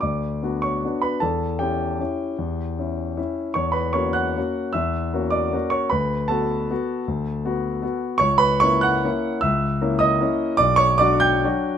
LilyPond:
\new Staff \with { instrumentName = "Grand piano" } { \time 3/4 \key b \minor \tempo 4 = 154 << { <d'' d'''>4. <cis'' cis'''>4 <b' b''>8 | <a' a''>4 <g' g''>2~ | <g' g''>2~ <g' g''>8 r8 | <cis'' cis'''>8 <b' b''>8 <cis'' cis'''>8 <fis'' fis'''>4. |
<e'' e'''>4. <d'' d'''>4 <cis'' cis'''>8 | <b' b''>4 <a' a''>2~ | <a' a''>2~ <a' a''>8 r8 | <cis'' cis'''>8 <b' b''>8 <cis'' cis'''>8 <fis'' fis'''>4. |
<e'' e'''>4. <dis'' dis'''>4. | <d'' d'''>8 <cis'' cis'''>8 <d'' d'''>8 <g'' g'''>4. | } \\ { d,4 <b d' fis'>4 <b d' fis'>4 | e,4 <cis' e'>4 <cis' e'>4 | e,4 <cis' e'>4 <cis' e'>4 | e,4 <ais cis' fis'>4 <ais cis' fis'>4 |
e,4 <ais cis' fis'>4 <ais cis' fis'>4 | d,4 <b fis'>4 <b fis'>4 | d,4 <b fis'>4 <b fis'>4 | cis,4 <ais cis' e'>4 <ais cis' e'>4 |
cis,4 <ais cis' e'>4 <ais cis' e'>4 | b,,4 <fis d' fis'>4 <fis d' fis'>4 | } >> }